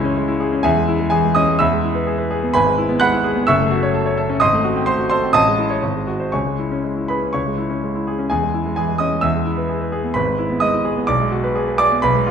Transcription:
Already playing: C#2 G#3 E4 C#5 G#5 C#6
0.04 C#4
0.17 G#3
0.28 E4
0.40 G#4
0.52 C#4
0.63 E2 G#4 E5 G#5
0.76 G#3
0.88 E4
0.99 G#3
1.10 E3 G#4 G#5
1.24 G#3
1.35 C#4 D#5 D#6
1.48 G#3
1.59 E2 E5 B5 E6
1.72 G#3
1.84 E4
1.95 B4
2.07 G#4
2.18 B4
2.31 G#4
2.43 B3
2.54 G#1 B4 G#5 B5
2.66 G#3
2.78 E4
2.89 B3
3.00 G#3 F#5 B5 F#6
3.13 E4
3.24 G#4
3.35 B3
3.47 F#1 E5 C#6 E6
3.59 A3
3.71 F#4
3.83 C#5
3.94 A4
4.06 C#5
4.18 A4
4.29 C#4
4.40 G#1 D#5 C6 D#6
4.53 A3
4.64 F#4
4.76 C4
4.86 A3 C5 C6
4.99 F#4
5.10 A4 C5 C6
5.22 C4
5.33 A1 D#5 A5 D#6
5.47 G#3
5.58 E4
5.70 C#5
5.82 G#1
5.95 G#3
6.07 F#4
6.20 C5
6.32 C#2 C#5 G#5 C#6
6.46 G#3
6.59 E4
6.71 C#4
6.84 G#3
6.97 E4
7.08 G#4 B4 B5
7.22 C#4
7.33 C#2 C#5 C#6
7.46 G#3
7.58 E4
7.70 C#4
7.83 G#3
7.95 E4
8.07 G#4
8.19 C#4
8.30 E2 G#4 G#5
8.43 G#3
8.54 E4
8.66 G#3
8.76 E3 G#4 G#5
8.88 G#3
8.98 C#4 D#5 D#6
9.12 G#3
9.21 E2 E5 E6
9.34 G#3
9.46 E4
9.57 B4
9.69 G#4
9.81 B4
9.92 G#4
10.04 B3
10.14 G#1 B4 B5
10.27 G#3
10.39 E4
10.50 B3
10.60 G#3 D#5 D#6
10.73 E4
10.85 G#4
10.97 B3
11.07 B1 D5 D6
11.20 G#3
11.32 F#4
11.44 B4
11.55 G#4
11.68 B4
11.78 G#4 D5 D6
11.92 B3
12.02 B1 B4 B5
12.15 G#3
12.27 F4

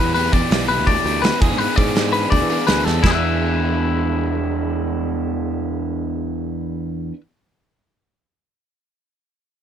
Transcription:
Already playing: E2 B3 E4 G4 B4
0.00 E3
0.14 E3 B3 E4 G4 B4, open hi-hat
0.33 E2 B3 E4 G4 D5, kick, open hi-hat
0.51 B1 E3 B3 E4 G4, snare, open hi-hat
0.68 B1 B3 E4 G4 B4, open hi-hat
0.78 D2
0.87 D2 D5, kick, open hi-hat
1.05 D2 B3 E4 G4, open hi-hat
1.22 D2 E3 B3 E4 B4, snare, open hi-hat
1.26 G4
1.41 E2 E3 B3 D4 G#4, kick, open hi-hat
1.50 G#2
1.58 E3 B3 D4 G#4 B4, open hi-hat
1.76 G#2 B3 D4 G#4 D5, kick, open hi-hat
1.95 E3 B3 D4 G#4, snare, open hi-hat
2.13 B3 D4 G#4 B4, open hi-hat
2.30 D2 D5, kick, open hi-hat
2.42 E3
2.49 B3 D4 G#4, open hi-hat
2.66 D2 E3 B3 D4 G#4 B4, snare, open hi-hat
2.85 E2 A4, snare
3.02 E2 E3 B3 D4 E4, kick, snare, china
3.06 G#4
3.11 B4 E5

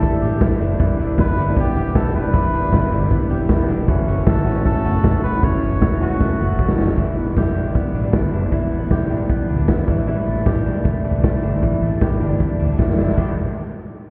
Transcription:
Already playing: E3 G3 D4 E4 G4 A4
0.03 A3, kick, hi-hat pedal, open hi-hat
0.22 A1 G4, hi-hat pedal, open hi-hat
0.40 E3 G3 A3 D4 E4, kick, snare, hi-hat pedal, open hi-hat
0.60 F#1 G3 D4 E4, hi-hat pedal, open hi-hat
0.79 E1 E2 B2 E3 G3 D4 E4 G4 B4, kick, hi-hat pedal, open hi-hat
0.98 E1 E3 G3 D4 E4, hi-hat pedal, open hi-hat
1.18 F#1 E3 G3 B3 D4 E4 B4, kick, snare, hi-hat pedal, open hi-hat
1.37 G1 E3 G3 D4 E4, hi-hat pedal, open hi-hat
1.56 B3 G4, kick, hi-hat pedal, open hi-hat
1.75 E1 G4, hi-hat pedal, open hi-hat
1.95 E3 G3 B3 D4 E4 A4, kick, snare, hi-hat pedal, open hi-hat
2.14 E1 E3 G3 D4 E4 B4, hi-hat pedal, open hi-hat
2.33 E1 E2 B2 E3 G3 D4 E4, kick, hi-hat pedal, open hi-hat
2.53 E1 E3 G3 D4 E4, hi-hat pedal, open hi-hat
2.72 G1 E3 G3 B3 D4 E4, kick, snare, hi-hat pedal, open hi-hat
2.91 G1 E3 G3 D4 E4, hi-hat pedal, open hi-hat
3.10 B3, kick, hi-hat pedal, open hi-hat
3.30 E1 G4, hi-hat pedal, open hi-hat
3.49 E3 G3 B3 D4 E4, kick, snare, hi-hat pedal, open hi-hat
3.68 E1 E3 G3 D4 E4, hi-hat pedal, open hi-hat
3.87 F#1 F#2 C#3 E3 A3 C#4 E4 F#4 A4, kick, hi-hat pedal, open hi-hat
4.07 F#1 A3 C#4 F#4, hi-hat pedal, open hi-hat
4.11 E3
4.26 G1 E3 A3 C#4 F#4 A4, kick, snare, hi-hat pedal, open hi-hat
4.46 A1 E3 A3 C#4 F#4, hi-hat pedal, open hi-hat
4.65 A3 A4, kick, hi-hat pedal, open hi-hat
4.85 F#1 F#4, hi-hat pedal, open hi-hat
5.03 E1 E3 A3 C#4 F#4, kick, snare, hi-hat pedal, open hi-hat
5.23 E1 E3 A3 C#4 F#4 B4, hi-hat pedal, open hi-hat
5.42 F#1 F#2 C#3 E3 A3 C#4 F#4 C#5, kick, hi-hat pedal, open hi-hat
5.61 F#1 E3 A3 C#4 F#4, hi-hat pedal, open hi-hat
5.80 E1 E3 A3 C#4 F#4, kick, snare, hi-hat pedal, open hi-hat
5.99 E1 E3 A3 C#4 F#4, hi-hat pedal, open hi-hat
6.21 A3, kick, snare
6.40 F#1 F#4
6.58 E3 A3 C#4 F#4, kick
6.68 snare
6.77 F#1 E3 A3 C#4 F#4, snare
6.88 snare
6.97 E1 E2 B2 E3 G3 D4 E4, kick, closed hi-hat
7.16 E1 E3 G3 B3 D4 E4, open hi-hat
7.36 F#1 E3 G3 D4 E4 G4, kick, snare, closed hi-hat
7.54 E1 E3 G3 D4 E4, open hi-hat
7.75 B1 B3, kick, closed hi-hat
7.94 A1 D4, open hi-hat
8.13 G1 E3 G3 B3 D4 E4, kick, snare, closed hi-hat
8.32 F#1 E3 G3 D4 E4, open hi-hat
8.51 E1 E2 B2 E3 G3 D4 E4, kick, closed hi-hat
8.71 E1 E3 G3 B3 D4 E4, open hi-hat
8.90 B1 E3 G3 D4 E4 G4, kick, snare, closed hi-hat
9.10 A1 E3 G3 D4 E4, open hi-hat
9.29 B1 B3, kick, closed hi-hat
9.49 D2 D4, open hi-hat
9.68 E2 E3 G3 B3 D4 E4, kick, snare, closed hi-hat
9.88 A1 E3 G3 D4 E4, kick, open hi-hat
10.07 A2 E3 G3 D4 E4, closed hi-hat
10.26 A1 G3 A3 D4 E4, open hi-hat
10.46 A1 E3 G3 D4 E4 G4, kick, snare, closed hi-hat
10.64 B1 G3 D4 E4, open hi-hat
10.84 E2 A3, kick, closed hi-hat
11.04 C#2 D4, open hi-hat
11.22 B1 E3 G3 A3 D4 E4, kick, snare, closed hi-hat
11.42 G1 G3 D4 E4, open hi-hat
11.61 A1 A2 E3 G3 D4 E4, kick, closed hi-hat
11.80 A1 G3 A3 D4 E4, open hi-hat
12.00 A1 E3 G3 D4 E4 G4, kick, snare, closed hi-hat
12.20 G1 G3 D4 E4, open hi-hat
12.40 E2 A3, kick, closed hi-hat
12.59 D2 D4, open hi-hat
12.79 F#2 E3 G3 A3 D4 E4, kick, snare
12.89 snare
12.98 F#1 G3 D4 E4, snare
13.08 snare
13.17 E1 E2 B2 E3 G3 B3 D4 E4 G4, kick, crash

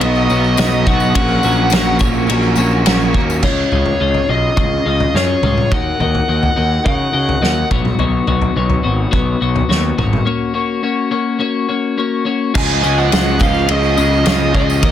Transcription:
0.01 B1 B2 F#3 B3 D#4 F#4 C#5 D#5, ride bell
0.16 tambourine
0.30 B1 B2 F#3 B3 D#4 F#4 C#5, tambourine
0.44 tambourine
0.57 B1 B2 F#3 B3 D#4 F#4 C#5, snare, ride bell, tambourine
0.86 B1 B2 F#3 B3 D#4 F#4 C#5 F#5, kick, tambourine
1.00 tambourine
1.15 A#1 A#2 F#3 A#3 C#4 F#4 C#5, kick, ride bell
1.28 tambourine
1.43 A#1 A#2 F#3 A#3 C#4 F#4 C#5, tambourine
1.70 A#1 A#2 F#3 A#3 C#4 F#4 C#5, snare, ride bell, tambourine
1.85 tambourine
1.99 A#1 A#2 F#3 A#3 C#4 F#4 C#5, kick, tambourine
2.13 tambourine
2.27 A#1 A#2 F#3 A#3 C#4 F#4 C#5, ride bell, tambourine
2.31 C#4
2.42 tambourine
2.56 A#1 A#2 F#3 A#3 C#4 F#4 C#5, tambourine
2.71 tambourine
2.86 A#1 A#2 F#3 A#3 C#4 F#4 C#5, snare, ride bell, tambourine
3.01 tambourine
3.14 D#2 A#2 F#3 A#3 C#4 F#4 C#5, kick
3.30 tambourine
3.42 C#2 C#4 F4 G#4 C#5 D#5, kick, floor tom, crash
3.71 C#2 C#4 F4 G#4 D#5, floor tom
3.86 floor tom
4.00 C#2 C#4 F4 G#4 D#5
4.14 floor tom
4.28 B1 C#4 F4 G#4 D#5
4.56 C#2 C#4 F4 G#4 D#5, kick, floor tom
4.85 C#2 C#4 F4 G#4 D#5
5.00 floor tom
5.14 F#2 C#4 F4 G#4 C#5 D#5, snare
5.42 C#2 C#4 F4 G#4 D#5, floor tom, mid tom
5.57 mid tom
5.71 D#2 D#4 F#4 A#4 D#5 F#5, kick, floor tom
6.00 D#2 D#4 F#4 A#4 D#5, floor tom
6.15 floor tom
6.28 D#2 D#4 F#4 A#4 D#5
6.43 floor tom
6.56 D#2 D#4 F#4 A#4 D#5
6.84 C#3 D#4 F#4 A#4 D#5 F#5, kick, floor tom
7.13 C#3 D#4 F#4 A#4 D#5
7.29 floor tom
7.41 D#2 D#4 F#4 A#4 D#5, snare
7.71 B1 B3 D#4 F#4 C#5, kick, floor tom, mid tom
7.85 mid tom
7.99 B1 B3 D#4 F#4 C#5, floor tom
8.27 B1 B3 D#4 F#4 C#5, floor tom
8.42 floor tom
8.56 B1 B3 D#4 F#4 C#5
8.70 floor tom
8.83 G#1 B3 D#4 F#4 C#5
9.11 B1 B3 D#4 F#4 C#5, kick, floor tom
9.41 B1 B3 D#4 F#4 C#5
9.56 floor tom
9.69 D#2 B3 D#4 F#4 C#5, snare
9.97 G#1 B3 D#4 F#4 C#5, floor tom, mid tom
10.13 mid tom
10.25 A#3 C#4 F#4 C#5
10.54 A#3 C#4 F#4 C#5
10.83 A#3 C#4 F#4 C#5
11.11 A#3 C#4 F#4 C#5
11.39 A#3 C#4 F#4 C#5
11.68 A#3 C#4 F#4 C#5
11.97 A#3 C#4 F#4 C#5
12.25 A#3 C#4 F#4 C#5
12.54 C#2 C#3 F3 G#3 C#4 F4 G#4 D#5 G#5, kick, crash, tambourine
12.82 C#2 C#3 F3 G#3 C#4 F4 G#4 D#5, tambourine
12.98 F#5, tambourine
13.11 C#2 C#3 F3 G#3 C#4 F4 G#4 D#5, snare, ride bell, tambourine
13.39 C#3 F3 G#3 C#4 F4 G#4 D#5 F5, kick, tambourine
13.54 tambourine
13.68 C#2 C#3 F3 G#3 C#4 F4 G#4 D#5, ride bell
13.83 tambourine
13.96 C#2 C#3 F3 G#3 C#4 F4 G#4 D#5, tambourine
14.13 tambourine
14.25 C#2 C#3 F3 G#3 C#4 F4 G#4 D#5, snare, ride bell, tambourine
14.53 C#2 C#3 F3 G#3 C#4 F4 G#4 D#5, kick, tambourine
14.70 tambourine
14.81 D#2 D#3 F#3 A#3 D#4 F#4 A#4 D#5, kick, ride bell

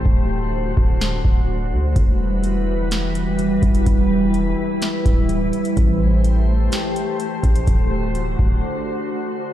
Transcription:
Already playing: A3 C5
0.06 D1 D3 F#4, kick
0.77 D1, kick
1.01 snare
1.25 D1, kick
1.72 D2
1.96 E1 E3 G3 F#4 B4, kick, closed hi-hat
2.44 closed hi-hat
2.91 snare, closed hi-hat
3.15 closed hi-hat
3.39 closed hi-hat
3.62 E1, kick, closed hi-hat
3.75 closed hi-hat
3.86 E1 E4, kick, closed hi-hat
4.34 closed hi-hat
4.82 snare, closed hi-hat
5.06 D1, kick, closed hi-hat
5.29 closed hi-hat
5.53 closed hi-hat
5.65 closed hi-hat
5.77 A1 A3 G4 C5, kick, closed hi-hat
6.24 closed hi-hat
6.72 snare, closed hi-hat
6.96 closed hi-hat
7.20 closed hi-hat
7.43 A1, kick, closed hi-hat
7.56 closed hi-hat
7.67 D1 D3 F#4, kick, closed hi-hat
8.15 closed hi-hat
8.39 D1, kick

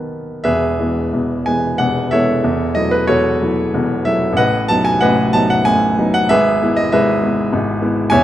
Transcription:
Already playing: B1 B2 D#3 B3 B4 D#5 F#5
0.44 E1 E2 G#4 B4 E5
0.79 E3 G#3 B3
1.13 E1 E2
1.46 E3 G#3 B3 G#5
1.78 E1 E2 F#5
2.11 E3 G#3 B3 A4 C#5 E5
2.43 E1 E2
2.75 F#3 A3 E4 D#5
2.91 B4
3.07 E1 E2 F#4 A4 C#5
3.42 F#3 A3 E4
3.74 E1 E2
4.05 F#3 A3 E4 E5
4.33 A1
4.37 A2 B4 D#5 F#5
4.68 F#3 B3 D#4 A5
4.85 G#5
5.01 A1 A2 B4 D#5 F#5
5.33 F#3 B3 D#4 A5
5.50 F#5
5.65 A1 A2 G#5
5.98 F#3 B3 D#4
6.14 F#5
6.29 G#1 G#2 G#4 B4 E5
6.63 G#3 B3 E4
6.76 D#5
6.92 G#1 G#2 G#4 B4 E5
7.23 G#3 B3 E4
7.53 G#1 G#2
7.82 G#3 B3 E4
8.10 E1 E2 C#5 E5 G#5

